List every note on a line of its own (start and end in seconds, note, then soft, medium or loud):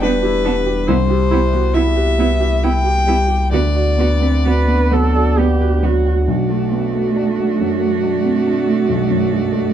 0.00 0.90 E1 medium
0.00 0.84 E2 medium
0.00 3.53 G3 medium
0.00 0.91 B3 medium
0.00 0.86 D4 medium
0.00 0.92 D4 medium
0.00 0.09 D4 medium
0.00 0.23 E4 medium
0.00 0.91 E4 soft
0.00 0.22 G4 medium
0.00 3.53 G4 medium
0.00 1.30 G4 medium
0.00 0.90 B4 medium
0.00 0.92 D5 medium
0.04 0.12 B3 medium
0.22 1.09 E4 medium
0.22 0.58 G4 medium
0.44 0.80 G3 soft
0.44 0.54 B3 medium
0.44 0.52 D4 medium
0.66 0.88 G4 medium
0.87 3.49 C2 medium
0.87 3.55 C2 medium
0.87 0.97 B3 medium
0.87 0.95 E4 medium
0.87 3.53 E4 medium
0.87 1.76 C5 medium
1.10 2.40 E4 medium
1.10 1.44 G4 soft
1.31 1.41 B3 soft
1.31 1.39 E4 medium
1.31 1.66 E4 soft
1.31 3.07 G4 medium
1.53 3.56 B3 medium
1.53 1.75 F#4 soft
1.74 1.83 B3 soft
1.74 2.09 E4 medium
1.74 1.82 E4 soft
1.74 2.65 E5 medium
1.96 2.31 G4 soft
1.96 3.53 B4 soft
2.18 2.54 B3 soft
2.18 2.27 B3 soft
2.18 2.27 E4 soft
2.40 2.62 E4 soft
2.40 2.76 G4 soft
2.63 2.72 B3 soft
2.63 2.98 E4 soft
2.63 3.57 E4 medium
2.63 2.72 E4 medium
2.63 3.52 G5 medium
2.84 3.21 G4 soft
3.07 3.43 G3 soft
3.07 3.16 B3 soft
3.07 3.16 E4 soft
3.07 3.29 G4 medium
3.28 3.52 G4 soft
3.28 3.57 G4 soft
3.52 6.24 D2 soft
3.52 6.29 D2 medium
3.52 6.24 B3 medium
3.52 3.61 B3 soft
3.52 6.26 D4 medium
3.52 3.61 F#4 soft
3.52 4.21 B4 medium
3.52 5.34 D5 medium
3.52 6.28 F#5 medium
3.74 4.12 F#4 soft
3.74 5.13 D5 soft
3.98 4.35 B3 soft
3.98 4.07 B3 soft
3.98 4.07 F#4 soft
3.98 5.82 F#5 soft
4.21 4.45 C4 soft
4.21 4.90 B4 medium
4.44 4.54 B3 soft
4.44 4.82 F#4 soft
4.44 4.94 B4 medium
4.68 5.05 B3 soft
4.68 8.59 B5 soft
4.91 5.28 F#3 soft
4.91 4.99 B3 soft
4.91 5.41 A4 medium
4.91 5.60 B4 medium
5.14 5.51 F#4 soft
5.14 5.36 D5 soft
5.36 5.74 B3 soft
5.36 5.46 B3 soft
5.36 5.85 G4 medium
5.36 9.28 D5 soft
5.60 5.97 F#4 soft
5.60 9.51 B4 medium
5.83 6.19 F#3 soft
5.83 5.91 B3 soft
5.83 6.28 F#4 medium
5.83 6.05 F#5 soft
6.06 6.28 F#4 soft
6.06 9.73 F#5 soft
6.27 8.84 B1 soft
6.27 9.73 A3 soft
6.27 9.73 D4 soft
6.27 9.73 F#4 soft
6.27 9.73 D5 soft
6.49 6.86 A3 soft
6.71 6.94 B3 soft
6.95 7.30 A3 soft
7.16 7.51 D4 soft
7.38 7.73 A3 soft
7.60 7.94 F#2 soft
7.81 8.16 A3 soft
8.03 8.38 D4 soft
8.24 8.46 C4 soft
8.47 8.80 D4 soft
8.68 9.02 A3 soft
8.89 9.73 B1 soft
9.10 9.44 F#2 soft
9.32 9.53 G2 soft
9.52 9.73 A3 soft